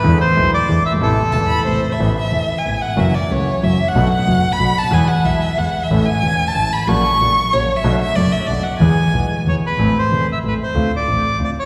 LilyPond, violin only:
\new Staff \with { instrumentName = "Violin" } { \time 3/4 \key a \minor \tempo 4 = 186 r2. | r4 a''8 b''8 c''8. e''16~ | \key a \major e''8 e''4~ e''16 gis''8. fis''8 | e''8 d''8 cis''4 e''8. fis''16~ |
fis''8 fis''4~ fis''16 b''8. a''8 | gis''8 fis''8 e''4 fis''8. e''16~ | e''8 gis''4~ gis''16 a''8. b''8 | cis'''2 cis''8. e''16~ |
e''8 e''8 d''8 e''8 d''8 fis''8 | gis''2 r4 | \key a \minor r2. | r2. | }